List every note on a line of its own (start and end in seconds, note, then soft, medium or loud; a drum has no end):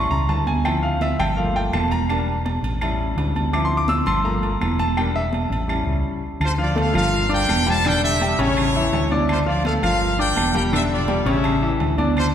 0.00 0.17 G3 soft
0.00 0.17 C#4 soft
0.00 0.17 E4 medium
0.00 0.10 C#6 loud
0.10 0.28 C#2 medium
0.10 0.29 A#5 loud
0.10 high conga soft
0.29 1.13 D2 medium
0.29 0.47 A5 medium
0.29 high conga soft
0.29 low timbale medium
0.29 low agogo medium
0.47 0.65 G#5 loud
0.47 high conga medium
0.47 low agogo medium
0.64 1.16 F3 medium
0.64 1.17 C4 soft
0.64 1.17 E4 medium
0.64 0.83 G5 medium
0.64 high conga soft
0.64 low agogo loud
0.64 claves medium
0.83 1.01 F5 medium
0.83 high conga soft
1.01 1.19 E5 medium
1.01 high conga loud
1.01 low timbale medium
1.01 low agogo medium
1.19 1.69 G1 loud
1.19 1.37 G5 loud
1.19 high conga soft
1.19 low conga medium
1.19 low agogo loud
1.19 claves medium
1.36 1.88 A3 medium
1.36 1.88 A#3 medium
1.36 1.89 F4 medium
1.36 1.55 F5 medium
1.36 high conga soft
1.36 low conga medium
1.56 1.73 G5 loud
1.56 high conga soft
1.56 low agogo medium
1.73 2.57 E1 medium
1.73 1.91 A5 medium
1.73 high conga medium
1.73 low timbale medium
1.73 low agogo loud
1.73 claves medium
1.91 2.09 A#5 loud
1.91 high conga medium
1.91 low agogo medium
2.09 2.33 G3 medium
2.09 2.34 A#3 medium
2.09 2.34 D4 medium
2.09 3.13 A5 medium
2.09 high conga soft
2.09 low agogo loud
2.09 claves medium
2.28 high conga soft
2.46 high conga loud
2.46 low timbale medium
2.46 low agogo medium
2.63 3.13 A1 loud
2.63 high conga soft
2.63 low agogo medium
2.81 3.50 G3 medium
2.81 3.50 C#4 soft
2.81 3.50 E4 medium
2.81 high conga soft
2.81 low agogo loud
2.81 claves medium
3.00 high conga soft
3.16 4.01 D2 medium
3.16 low timbale medium
3.16 low agogo medium
3.35 high conga medium
3.35 low agogo medium
3.53 4.04 F3 medium
3.53 4.05 C4 medium
3.53 4.05 E4 medium
3.53 3.65 D6 medium
3.53 low agogo loud
3.53 claves medium
3.65 3.77 C6 loud
3.71 high conga soft
3.77 3.89 D6 loud
3.88 4.06 E6 loud
3.88 high conga loud
3.88 low timbale medium
3.88 low agogo medium
4.06 4.57 G1 loud
4.06 4.24 C6 loud
4.06 high conga soft
4.06 low conga medium
4.06 low agogo loud
4.06 claves medium
4.24 4.48 A3 medium
4.24 4.49 A#3 soft
4.24 4.49 F4 medium
4.24 4.75 A#5 medium
4.24 high conga soft
4.42 high conga soft
4.42 low agogo medium
4.61 5.45 E1 medium
4.61 high conga medium
4.61 low timbale medium
4.61 low agogo loud
4.61 claves medium
4.79 4.97 A5 loud
4.79 high conga medium
4.79 low agogo medium
4.97 5.21 G3 medium
4.97 5.21 A#3 soft
4.97 5.21 D4 medium
4.97 5.14 G5 medium
4.97 high conga soft
4.97 low agogo loud
4.97 claves medium
5.15 5.26 E5 loud
5.15 high conga soft
5.33 high conga loud
5.33 low timbale medium
5.33 low agogo medium
5.50 5.84 A1 loud
5.50 high conga soft
5.50 low agogo medium
5.68 6.19 G3 medium
5.68 6.20 C#4 soft
5.68 6.20 E4 medium
5.68 high conga soft
5.68 low agogo loud
5.68 claves medium
5.86 6.03 C#2 medium
5.86 high conga soft
6.40 6.91 D2 medium
6.40 6.50 F4 medium
6.40 high conga soft
6.40 low agogo loud
6.40 claves medium
6.44 6.52 C5 loud
6.58 6.73 F3 medium
6.58 6.73 F4 medium
6.58 6.77 F4 medium
6.58 6.77 D5 loud
6.58 6.74 F5 medium
6.58 high conga soft
6.75 6.91 A3 medium
6.75 6.91 A4 medium
6.75 6.94 A4 medium
6.75 6.91 A5 medium
6.75 high conga loud
6.75 low timbale medium
6.75 low agogo medium
6.79 6.95 F5 medium
6.93 7.45 G1 loud
6.93 7.23 F3 medium
6.93 7.24 F4 medium
6.93 7.29 A#4 medium
6.93 7.24 F5 medium
6.93 7.29 F5 loud
6.93 high conga soft
6.93 low conga medium
6.93 low agogo loud
6.93 claves medium
7.12 high conga soft
7.29 7.59 D4 medium
7.29 7.67 A#4 medium
7.29 7.59 D5 medium
7.29 7.68 G5 loud
7.29 7.60 D6 medium
7.29 high conga soft
7.29 low agogo medium
7.48 8.33 E1 loud
7.48 high conga medium
7.48 low timbale medium
7.48 low agogo loud
7.48 claves medium
7.66 7.81 G3 medium
7.66 7.81 G4 medium
7.66 7.85 C5 medium
7.66 7.81 G5 medium
7.66 7.86 A5 loud
7.66 high conga medium
7.66 low agogo medium
7.85 8.15 D3 medium
7.85 8.15 D4 medium
7.85 8.04 A#4 medium
7.85 8.15 D5 medium
7.85 8.04 G5 loud
7.85 high conga soft
7.85 low agogo loud
7.85 claves medium
8.03 8.37 G4 medium
8.03 8.37 E5 loud
8.03 high conga soft
8.21 8.36 G3 medium
8.21 8.36 G4 medium
8.21 8.36 G5 medium
8.21 high conga loud
8.21 low timbale medium
8.21 low agogo medium
8.39 8.89 A1 loud
8.39 8.68 C#3 medium
8.39 8.68 C#4 loud
8.39 9.11 E4 medium
8.39 8.68 C#5 medium
8.39 9.12 C#5 loud
8.39 high conga soft
8.39 low agogo medium
8.57 high conga soft
8.57 low agogo loud
8.57 claves medium
8.74 9.05 E3 medium
8.74 9.05 E4 medium
8.74 9.05 E5 medium
8.74 high conga soft
8.92 9.77 D2 medium
8.92 high conga soft
8.92 low timbale medium
8.92 low agogo medium
9.11 9.40 D4 medium
9.11 9.41 D5 medium
9.11 9.41 D6 medium
9.11 high conga medium
9.11 low agogo medium
9.29 9.39 F4 medium
9.29 9.38 C5 medium
9.29 high conga soft
9.29 low agogo loud
9.29 claves medium
9.46 9.61 F3 medium
9.46 9.61 F4 medium
9.46 9.64 F4 medium
9.46 9.64 D5 medium
9.46 9.61 F5 medium
9.46 high conga soft
9.64 9.80 A3 medium
9.64 9.80 A4 medium
9.64 9.74 A4 medium
9.64 9.73 F5 medium
9.64 9.80 A5 medium
9.64 high conga loud
9.64 low timbale medium
9.64 low agogo medium
9.82 10.33 G1 medium
9.82 10.13 F3 medium
9.82 10.13 F4 medium
9.82 10.17 A#4 medium
9.82 10.16 F5 loud
9.82 10.13 F5 medium
9.82 high conga soft
9.82 low conga medium
9.82 low agogo loud
9.82 claves medium
10.01 high conga soft
10.18 10.48 D4 medium
10.18 10.53 A#4 medium
10.18 10.49 D5 medium
10.18 10.53 G5 loud
10.18 10.49 D6 medium
10.18 high conga soft
10.18 low agogo medium
10.36 11.21 E1 medium
10.36 high conga medium
10.36 low timbale medium
10.36 low agogo loud
10.36 claves medium
10.54 10.69 G3 medium
10.54 10.70 G4 medium
10.54 10.64 A#4 medium
10.54 10.70 G5 medium
10.54 10.63 G5 medium
10.54 high conga medium
10.54 low agogo medium
10.72 11.02 D3 medium
10.72 11.02 D4 medium
10.72 10.82 G4 medium
10.72 11.03 D5 medium
10.72 10.82 E5 loud
10.72 high conga soft
10.72 low agogo loud
10.72 claves medium
10.89 11.26 F4 medium
10.89 11.25 D5 medium
10.89 high conga soft
11.08 11.23 G3 medium
11.08 11.24 G4 medium
11.08 11.23 G5 medium
11.08 high conga loud
11.08 low timbale medium
11.08 low agogo medium
11.25 11.77 A1 loud
11.25 11.56 C#3 medium
11.25 11.56 C#4 medium
11.25 11.73 G4 medium
11.25 11.56 C#5 medium
11.25 11.73 E5 medium
11.25 high conga soft
11.25 low agogo medium
11.44 high conga soft
11.44 low agogo loud
11.44 claves medium
11.62 11.92 E3 medium
11.62 11.92 E4 medium
11.62 11.93 E5 medium
11.62 high conga soft
11.80 12.35 D2 medium
11.80 high conga soft
11.80 low timbale medium
11.80 low agogo medium
11.98 12.28 D4 medium
11.98 12.28 D5 medium
11.98 12.29 D6 medium
11.98 high conga medium
11.98 low agogo medium
12.17 12.26 F4 medium
12.17 12.25 C5 loud
12.17 low agogo loud
12.17 claves medium